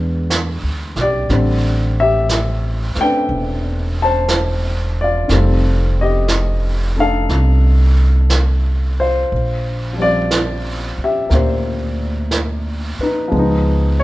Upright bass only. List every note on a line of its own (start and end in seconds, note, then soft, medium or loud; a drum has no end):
0.00 0.59 E2 medium
0.63 0.94 D2 soft
0.97 1.28 B1 medium
1.29 2.92 A1 medium
2.96 muted upright bass stroke soft
3.29 5.25 E1 medium
5.29 7.26 F1 medium
7.29 9.27 C2 medium
9.32 10.96 A#1 medium
10.97 muted upright bass stroke soft
11.30 12.94 D2 medium
12.98 muted upright bass stroke soft
13.32 14.03 C#2 medium